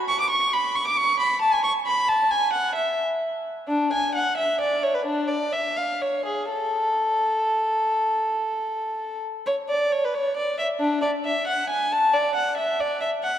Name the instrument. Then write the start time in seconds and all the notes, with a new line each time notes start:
violin
0.08 C#6
0.20 D6
0.30 C#6
0.53 B5
0.75 C#6
0.87 D6
0.97 C#6
1.20 B5
1.41 A5
1.53 G#5
1.64 C#6
1.86 B5
2.08 A5
2.31 G#5
2.53 F#5
2.75 E5
3.68 D4
3.93 G#5
4.15 F#5
4.37 E5
4.61 D5
4.83 C#5
4.95 B4
5.06 D4
5.28 D5
5.53 E5
5.77 F5
6.02 C#5
6.25 G#4
6.50 A4
9.46 C#5
9.69 D5
9.92 C#5
10.05 B4
10.14 C#5
10.37 D5
10.58 E5
10.80 D4
11.02 D5
11.25 E5
11.47 F#5
11.70 G#5
11.92 A5
12.13 D5
12.35 F#5
12.57 E5
12.80 D5
13.01 E5
13.23 F#5